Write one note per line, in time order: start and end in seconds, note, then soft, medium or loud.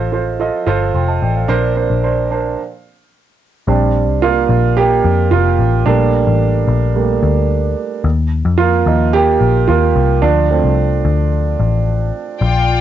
0.00 0.49 A1 medium
0.00 0.12 F4 loud
0.00 0.13 A4 medium
0.00 0.13 C5 loud
0.00 0.41 D#5 medium
0.12 0.37 F4 medium
0.12 0.37 A4 medium
0.12 0.38 C5 medium
0.40 0.64 F4 medium
0.40 0.65 A4 medium
0.40 0.65 D#5 medium
0.66 0.92 G1 medium
0.66 0.92 F4 medium
0.66 0.92 A4 medium
0.66 0.92 C5 loud
0.94 1.20 F1 medium
0.94 1.08 G5 soft
0.94 1.08 C6 medium
1.08 1.21 D#5 soft
1.08 1.21 A5 medium
1.22 1.47 A1 medium
1.22 1.35 D5 soft
1.22 1.35 G5 medium
1.35 1.48 C5 soft
1.35 1.61 F5 soft
1.48 1.87 A#1 medium
1.48 2.27 A#2 medium
1.48 1.73 D4 medium
1.48 1.74 A#4 medium
1.48 1.74 C5 loud
1.76 2.01 D4 medium
1.76 2.01 A#4 medium
1.76 2.01 C5 medium
1.90 2.55 A#1 medium
2.03 2.28 D4 medium
2.03 2.28 A#4 medium
2.03 2.29 C5 medium
2.31 2.56 D4 medium
2.31 2.56 A#4 medium
2.31 2.56 C5 medium
3.67 4.08 A#1 loud
3.67 4.04 G3 medium
3.67 4.04 C4 medium
3.67 4.05 D4 medium
4.08 4.47 C2 medium
4.22 4.73 A#3 medium
4.22 4.78 F4 medium
4.49 5.00 A#1 loud
4.77 5.28 A#3 medium
4.77 5.33 G4 loud
5.04 5.30 F2 loud
5.31 5.57 F1 medium
5.31 5.83 A#3 medium
5.31 5.88 F4 medium
5.59 5.84 A1 medium
5.86 6.24 A#1 loud
5.86 6.94 G3 medium
5.86 6.64 A3 medium
5.86 6.65 A#3 medium
5.86 7.46 D4 medium
6.27 6.65 A1 medium
6.68 7.19 A#1 loud
6.95 7.20 G3 medium
6.95 7.20 A3 soft
6.95 7.20 A#3 medium
7.23 7.73 D2 medium
8.04 8.42 D#2 medium
8.45 8.83 F2 medium
8.58 8.86 A#3 medium
8.58 9.15 F4 medium
8.86 9.37 D#2 loud
8.86 10.19 F3 medium
8.86 9.14 A#3 medium
8.86 10.19 D#4 medium
9.13 9.65 A#3 medium
9.13 9.70 G4 loud
9.41 9.66 A#1 medium
9.68 9.94 D#2 medium
9.68 10.20 A#3 medium
9.68 10.24 F4 medium
9.96 10.21 C2 loud
10.22 10.61 D2 loud
10.22 10.48 F3 medium
10.22 11.82 D4 medium
10.50 11.28 F3 medium
10.50 11.28 A3 medium
10.50 11.28 C4 medium
10.64 11.02 C2 medium
11.05 11.56 D2 loud
11.60 12.10 A1 medium
12.41 12.81 A#1 loud
12.41 12.81 F4 medium
12.41 12.81 D5 medium
12.41 12.81 G5 medium